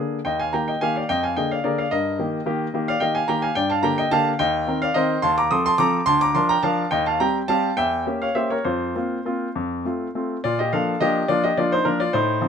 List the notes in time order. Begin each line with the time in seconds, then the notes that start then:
Already playing: D3 D5
0.00 A#3 G#4
0.25 D#2 D#5 G5
0.40 F5 G#5
0.53 D#3 A#3 G4 G5 A#5
0.68 D#5 G5
0.81 D#3 A#3 G4 F5 G#5
0.96 D5 F5
1.09 F2 D#5 G5
1.23 F5 G#5
1.37 D3 A#3 G#4 D#5 G5
1.51 D5 F5
1.64 D3 A#3 G#4 A#4 D5
1.78 D5 F5
1.91 G2 A#4 D#5
2.19 D#3 A#3 G4
2.46 D#3 A#3 G4
2.74 D#3 A#3 G4
2.88 D5 F5
3.00 D#3 A#3 G4 D#5 G5
3.15 F5 G#5
3.28 D#3 A#3 G4 G5 A#5
3.42 F5 G#5
3.55 G2 D5 G5
3.70 F5 A5
3.83 D3 A#3 G4 G5 A#5
3.98 D#5 G5
4.11 D3 A#3 G4 F5 A5
4.39 D#2 D#5 G5
4.67 D#3 C4 A#4
4.82 D5 F5
4.94 D#3 C4 A#4 C5 D#5
5.22 D#2 A5 C6
5.38 A#5 D6
5.51 F3 C4 A4 C6 D#6
5.66 A5 C6
5.78 F3 C4 A4 A#5 D6
6.06 D2 A5 C6
6.21 A#5 D6
6.35 F3 D4 A#4 A5 C6
6.49 G5 A#5
6.63 F3 D4 A#4 F5 A5
6.91 D#2 D#5 G5
7.06 F5 A5
7.20 G3 C4 G4 G5 A#5
7.48 G3 C4 G4 F5 A5
7.77 E2 E5 G5
8.06 A#3 C#4 G4
8.22 C#5 F5
8.35 A#3 C#4 G4 C5 E5
8.50 A#4 C#5
8.65 F2 F4 C5
8.95 A#3 C4 F4
9.25 A#3 C4 F4
9.55 F2
9.85 A3 C4 F4
10.15 A3 C4 F4
10.44 A#2 F4 D5
10.59 G4 D#5
10.73 F3 A#3 D4 A4 F5
11.01 F3 A#3 D4 G4 D#5
11.28 F3 A#3 D4 F4 D5
11.44 G4 D#5
11.57 F3 A#3 D4 F4 D5
11.72 D#4 C5
11.85 F3 A#3 D4 A#4
12.00 F4 D5
12.13 A2 D#4 C5
12.41 F3 C4 D#4